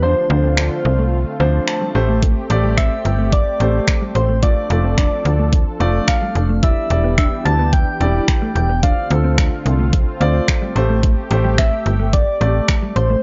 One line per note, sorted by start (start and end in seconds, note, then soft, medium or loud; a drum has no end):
0.00 0.15 E2 medium
0.00 1.93 D3 medium
0.00 0.24 F3 medium
0.00 4.39 A3 medium
0.00 6.59 C4 medium
0.00 0.24 D4 medium
0.00 0.12 D4 medium
0.00 1.93 F4 medium
0.00 0.24 C5 medium
0.00 0.57 C5 loud
0.30 0.70 D2 loud
0.30 1.16 F3 medium
0.30 1.16 D4 medium
0.30 1.16 C5 medium
0.30 muted clean electric guitar stroke soft
0.44 0.53 C4 medium
0.57 0.67 D4 medium
0.57 1.36 C5 medium
0.57 finger snap loud
0.71 muted clean electric guitar stroke soft
0.85 1.25 C2 medium
0.99 1.09 A3 medium
1.40 1.60 D2 medium
1.40 1.95 F3 medium
1.40 1.50 C4 medium
1.40 1.95 D4 medium
1.40 1.94 C5 medium
1.68 2.19 A5 medium
1.68 finger snap loud
1.81 1.91 G3 medium
1.95 2.35 A1 medium
1.95 2.39 A3 medium
1.95 4.40 G4 medium
1.95 2.39 G4 medium
1.95 2.39 C5 loud
1.95 muted clean electric guitar stroke soft
2.09 2.19 A3 medium
2.23 2.32 A3 medium
2.23 kick loud
2.23 closed hi-hat medium
2.50 2.90 A1 loud
2.50 3.36 A3 medium
2.50 3.36 G4 medium
2.50 3.36 D5 medium
2.50 muted clean electric guitar stroke soft
2.50 closed hi-hat medium
2.64 2.74 G3 medium
2.77 2.87 C4 medium
2.77 3.34 E5 loud
2.77 finger snap loud
2.77 kick loud
2.77 closed hi-hat medium
2.91 muted clean electric guitar stroke soft
3.05 3.45 G1 medium
3.05 closed hi-hat soft
3.19 3.29 A3 medium
3.33 4.17 D5 loud
3.33 kick loud
3.33 closed hi-hat medium
3.60 3.80 A1 medium
3.60 4.25 A3 medium
3.60 3.70 C4 medium
3.60 4.25 G4 medium
3.60 4.25 C5 medium
3.60 closed hi-hat soft
3.87 finger snap loud
3.87 kick loud
3.87 closed hi-hat medium
4.01 4.11 G3 medium
4.15 4.55 A1 medium
4.15 4.44 C5 medium
4.15 muted clean electric guitar stroke soft
4.15 closed hi-hat soft
4.29 4.39 A3 medium
4.42 6.61 F3 medium
4.42 4.64 A3 medium
4.42 8.79 D4 medium
4.42 4.52 F4 medium
4.42 4.64 F4 medium
4.42 6.61 A4 medium
4.42 4.97 D5 loud
4.42 4.64 D5 medium
4.42 kick loud
4.42 closed hi-hat medium
4.70 5.10 F1 loud
4.70 5.56 A3 medium
4.70 5.56 F4 medium
4.70 5.56 D5 medium
4.70 muted clean electric guitar stroke soft
4.70 closed hi-hat medium
4.84 4.94 C4 medium
4.98 5.08 D4 medium
4.98 5.76 D5 medium
4.98 finger snap loud
4.98 kick loud
4.98 closed hi-hat medium
5.12 muted clean electric guitar stroke soft
5.25 5.65 D2 medium
5.25 closed hi-hat soft
5.39 5.49 A3 medium
5.53 kick loud
5.53 closed hi-hat medium
5.80 6.00 F1 medium
5.80 6.45 A3 medium
5.80 5.90 C4 medium
5.80 6.45 F4 medium
5.80 6.45 D5 loud
5.80 closed hi-hat soft
6.08 6.65 F5 loud
6.08 finger snap loud
6.08 kick loud
6.08 closed hi-hat medium
6.22 6.32 G3 medium
6.35 6.76 F1 medium
6.35 muted clean electric guitar stroke soft
6.35 closed hi-hat soft
6.49 6.59 A3 medium
6.63 8.81 E3 medium
6.63 6.84 G3 medium
6.63 8.81 B3 medium
6.63 6.84 E4 medium
6.63 6.73 E4 medium
6.63 8.81 G4 medium
6.63 6.85 D5 medium
6.63 7.18 E5 loud
6.63 kick loud
6.63 closed hi-hat medium
6.90 7.31 E1 loud
6.90 7.76 G3 medium
6.90 7.76 E4 medium
6.90 7.77 D5 medium
6.90 muted clean electric guitar stroke soft
6.90 closed hi-hat medium
7.04 7.14 B3 medium
7.18 7.28 D4 medium
7.18 7.47 E5 medium
7.18 finger snap loud
7.18 kick loud
7.18 closed hi-hat medium
7.32 muted clean electric guitar stroke soft
7.45 7.86 D2 medium
7.45 7.72 A5 loud
7.45 closed hi-hat soft
7.59 7.69 B3 medium
7.73 8.52 G5 loud
7.73 kick loud
7.73 closed hi-hat medium
8.00 8.21 E1 medium
8.00 8.65 G3 medium
8.00 8.10 C4 medium
8.00 8.65 E4 medium
8.00 8.65 D5 medium
8.00 closed hi-hat soft
8.28 finger snap loud
8.28 kick loud
8.28 closed hi-hat medium
8.42 8.52 A3 medium
8.55 8.96 E1 medium
8.55 8.81 G5 medium
8.55 muted clean electric guitar stroke soft
8.55 closed hi-hat soft
8.69 8.79 B3 medium
8.83 10.74 D3 medium
8.83 13.20 A3 medium
8.83 9.04 C4 medium
8.83 13.20 C4 medium
8.83 8.93 D4 medium
8.83 9.05 F4 medium
8.83 10.74 F4 medium
8.83 9.05 D5 medium
8.83 9.89 F5 loud
8.83 kick loud
8.83 closed hi-hat medium
9.10 9.51 D2 loud
9.10 9.96 C4 medium
9.10 9.97 F4 medium
9.10 9.97 A4 medium
9.10 muted clean electric guitar stroke soft
9.10 closed hi-hat medium
9.24 9.34 C4 medium
9.38 9.48 D4 medium
9.38 finger snap loud
9.38 kick loud
9.38 closed hi-hat medium
9.52 muted clean electric guitar stroke soft
9.66 10.06 C2 medium
9.66 closed hi-hat soft
9.79 9.89 A3 medium
9.93 kick loud
9.93 closed hi-hat medium
10.20 10.41 D2 medium
10.20 10.76 C4 medium
10.20 10.31 C4 medium
10.20 10.76 F4 medium
10.20 10.76 D5 loud
10.20 closed hi-hat soft
10.48 finger snap loud
10.48 kick loud
10.48 closed hi-hat medium
10.62 10.72 G3 medium
10.76 11.16 A1 medium
10.76 11.20 A3 medium
10.76 11.20 G4 medium
10.76 13.21 G4 medium
10.76 11.20 C5 loud
10.76 muted clean electric guitar stroke soft
10.76 closed hi-hat soft
10.89 10.99 A3 medium
11.03 11.13 A3 medium
11.03 kick loud
11.03 closed hi-hat medium
11.31 11.71 A1 loud
11.31 12.17 A3 medium
11.31 12.17 G4 medium
11.31 12.17 C5 medium
11.31 muted clean electric guitar stroke soft
11.31 closed hi-hat medium
11.44 11.54 G3 medium
11.58 11.68 C4 medium
11.58 12.15 E5 loud
11.58 finger snap loud
11.58 kick loud
11.58 closed hi-hat medium
11.72 muted clean electric guitar stroke soft
11.86 12.26 G1 medium
11.86 closed hi-hat soft
12.00 12.09 A3 medium
12.13 12.95 D5 loud
12.13 kick loud
12.13 closed hi-hat medium
12.41 12.61 A1 medium
12.41 13.05 A3 medium
12.41 12.51 C4 medium
12.41 13.05 G4 medium
12.41 13.06 D5 medium
12.41 closed hi-hat soft
12.68 finger snap loud
12.68 kick loud
12.68 closed hi-hat medium
12.82 12.92 G3 medium
12.96 13.16 A1 medium
12.96 13.22 C5 medium
12.96 muted clean electric guitar stroke soft
12.96 closed hi-hat soft
13.10 13.20 A3 medium